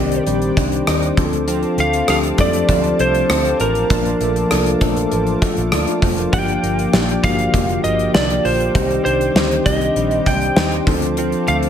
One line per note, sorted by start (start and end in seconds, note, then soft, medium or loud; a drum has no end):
0.00 0.19 C2 medium
0.00 1.19 D#3 medium
0.00 0.26 G3 medium
0.00 1.17 C4 medium
0.00 0.57 D4 medium
0.00 1.18 D4 medium
0.00 0.86 D#4 medium
0.00 1.20 G4 medium
0.00 3.86 C5 medium
0.00 0.23 D5 medium
0.00 1.15 D5 medium
0.00 1.19 D5 medium
0.00 1.15 G5 medium
0.00 11.69 D6 medium
0.12 closed hi-hat medium
0.26 0.49 A#1 medium
0.26 1.17 G3 medium
0.26 closed hi-hat medium
0.42 closed hi-hat soft
0.57 0.80 C2 medium
0.57 1.51 D4 medium
0.57 kick medium
0.57 closed hi-hat medium
0.72 closed hi-hat soft
0.87 1.10 D#2 medium
0.87 1.24 D#4 medium
0.87 cross-stick loud
0.87 closed hi-hat medium
1.03 closed hi-hat soft
1.17 1.63 D2 medium
1.17 1.47 F3 medium
1.17 1.94 F3 medium
1.17 1.94 C4 medium
1.17 1.94 D4 medium
1.17 1.24 G#4 medium
1.17 8.72 F5 medium
1.17 6.29 A5 medium
1.17 kick loud
1.17 closed hi-hat medium
1.25 1.97 A4 loud
1.33 closed hi-hat soft
1.48 2.69 F3 medium
1.48 2.07 C4 medium
1.48 closed hi-hat loud
1.63 closed hi-hat soft
1.78 2.01 D2 loud
1.78 2.38 A3 medium
1.78 2.09 F5 loud
1.78 closed hi-hat medium
1.93 closed hi-hat medium
2.08 2.31 D2 medium
2.08 2.34 F3 medium
2.08 2.34 C4 medium
2.08 3.29 C4 medium
2.08 2.34 D4 medium
2.08 2.34 G4 medium
2.08 2.18 F5 loud
2.08 cross-stick loud
2.08 closed hi-hat medium
2.23 closed hi-hat soft
2.38 2.61 F2 medium
2.38 3.40 F3 medium
2.38 2.99 A3 medium
2.38 3.40 C4 medium
2.38 3.41 D4 medium
2.38 3.41 A4 medium
2.38 3.02 D5 loud
2.38 kick medium
2.38 closed hi-hat medium
2.53 closed hi-hat soft
2.69 2.92 D2 medium
2.69 3.60 F3 medium
2.69 kick medium
2.69 closed hi-hat medium
2.84 closed hi-hat soft
2.99 3.22 C2 medium
2.99 4.21 A3 medium
2.99 3.60 C5 medium
2.99 closed hi-hat medium
3.14 closed hi-hat soft
3.29 3.52 D2 medium
3.29 3.91 C4 medium
3.29 cross-stick loud
3.29 closed hi-hat medium
3.45 closed hi-hat soft
3.60 3.83 A1 medium
3.60 3.90 F3 medium
3.60 5.38 A#4 medium
3.60 closed hi-hat medium
3.75 closed hi-hat soft
3.90 4.13 A#1 medium
3.90 4.41 F3 medium
3.90 5.12 F3 medium
3.90 4.41 A#3 medium
3.90 4.41 D4 medium
3.90 4.51 D4 medium
3.90 8.71 F4 medium
3.90 4.42 A5 medium
3.90 kick loud
3.90 closed hi-hat medium
4.05 closed hi-hat soft
4.20 4.43 A#1 medium
4.20 4.80 A3 medium
4.20 closed hi-hat medium
4.36 closed hi-hat medium
4.50 4.74 C2 medium
4.50 4.76 F3 medium
4.50 4.76 A#3 medium
4.50 4.76 D4 medium
4.50 5.72 D4 medium
4.50 4.77 A4 medium
4.50 cross-stick medium
4.50 closed hi-hat medium
4.66 closed hi-hat soft
4.81 5.04 A#1 medium
4.81 5.82 F3 medium
4.81 5.41 A3 medium
4.81 5.72 D4 medium
4.81 5.72 A5 medium
4.81 kick medium
4.81 closed hi-hat medium
4.97 closed hi-hat medium
5.12 5.34 A1 medium
5.12 6.03 F3 medium
5.12 closed hi-hat medium
5.27 closed hi-hat soft
5.42 6.39 A3 medium
5.42 kick medium
5.42 closed hi-hat medium
5.57 5.69 A#1 medium
5.57 closed hi-hat soft
5.72 5.84 D2 medium
5.72 6.33 D4 medium
5.72 5.87 A4 soft
5.72 5.87 F5 medium
5.72 cross-stick loud
5.72 closed hi-hat medium
5.87 6.02 F4 medium
5.87 6.02 D5 medium
5.87 closed hi-hat soft
6.02 6.25 F1 medium
6.02 6.32 F3 medium
6.02 6.17 C5 medium
6.02 kick medium
6.02 open hi-hat medium
6.18 6.33 D4 soft
6.18 6.47 A#4 medium
6.18 closed hi-hat soft
6.32 6.56 G1 loud
6.32 7.53 F3 medium
6.32 6.84 A#3 medium
6.32 6.93 D4 medium
6.32 6.84 D4 medium
6.32 6.84 G4 medium
6.32 7.27 G5 loud
6.32 10.84 G5 medium
6.32 kick loud
6.32 closed hi-hat medium
6.48 closed hi-hat soft
6.63 6.86 G1 medium
6.63 7.23 A#3 medium
6.63 closed hi-hat medium
6.79 closed hi-hat medium
6.93 7.16 A#1 medium
6.93 7.19 F3 medium
6.93 7.19 A#3 medium
6.93 8.14 D4 medium
6.93 7.19 D4 medium
6.93 7.19 G4 medium
6.93 snare loud
7.09 closed hi-hat soft
7.23 7.46 G1 medium
7.23 8.25 D3 medium
7.23 8.25 F3 medium
7.23 8.25 A#3 medium
7.23 7.83 A#3 medium
7.23 7.31 F#4 medium
7.23 7.80 F5 loud
7.23 kick medium
7.23 closed hi-hat medium
7.31 8.29 G4 medium
7.39 closed hi-hat medium
7.54 7.77 F1 medium
7.54 8.44 F3 medium
7.54 kick medium
7.54 closed hi-hat medium
7.69 closed hi-hat soft
7.84 8.07 G1 medium
7.84 8.81 A#3 medium
7.84 8.14 D#5 medium
7.84 closed hi-hat medium
7.99 closed hi-hat soft
8.14 8.37 C2 medium
8.14 8.75 D4 medium
8.14 8.46 D5 medium
8.14 snare loud
8.30 closed hi-hat soft
8.45 8.67 A#1 medium
8.45 8.75 F3 medium
8.45 9.04 C5 medium
8.45 open hi-hat medium
8.60 closed hi-hat medium
8.74 8.98 C2 medium
8.74 8.82 D3 medium
8.74 9.95 G3 medium
8.74 9.26 C4 medium
8.74 9.35 D#4 medium
8.74 9.26 G4 medium
8.74 11.69 C5 medium
8.74 9.26 D5 medium
8.74 kick loud
8.74 closed hi-hat medium
8.81 9.29 D#3 medium
8.90 closed hi-hat soft
9.05 9.28 C2 medium
9.05 9.65 D4 medium
9.05 9.68 C5 medium
9.05 closed hi-hat medium
9.21 closed hi-hat medium
9.35 9.58 D2 medium
9.35 9.61 D#3 medium
9.35 9.61 C4 medium
9.35 9.61 D4 medium
9.35 10.56 D#4 medium
9.35 9.61 G4 medium
9.35 snare loud
9.51 closed hi-hat soft
9.65 9.89 C2 medium
9.65 10.67 D#3 medium
9.65 10.67 C4 medium
9.65 10.26 D4 medium
9.65 10.67 G4 medium
9.65 10.28 D#5 medium
9.65 kick medium
9.65 closed hi-hat medium
9.81 closed hi-hat medium
9.96 10.19 A#1 medium
9.96 10.87 G3 medium
9.96 closed hi-hat medium
10.11 closed hi-hat soft
10.26 10.49 C2 medium
10.26 11.21 D4 medium
10.26 10.83 G5 medium
10.26 kick medium
10.26 closed hi-hat medium
10.41 closed hi-hat soft
10.56 10.79 D#2 medium
10.56 10.93 D#4 medium
10.56 snare loud
10.72 closed hi-hat soft
10.86 11.32 D2 medium
10.86 11.63 F3 medium
10.86 11.18 F3 medium
10.86 11.63 C4 medium
10.86 11.63 D4 medium
10.86 11.63 A4 medium
10.86 11.69 F5 medium
10.86 11.69 A5 medium
10.86 kick loud
10.86 open hi-hat medium
11.02 closed hi-hat medium
11.17 11.69 F3 medium
11.17 11.69 C4 medium
11.17 closed hi-hat medium
11.32 closed hi-hat soft
11.47 11.69 D2 loud
11.47 11.69 A3 medium
11.47 11.56 F5 loud
11.47 closed hi-hat medium
11.63 closed hi-hat medium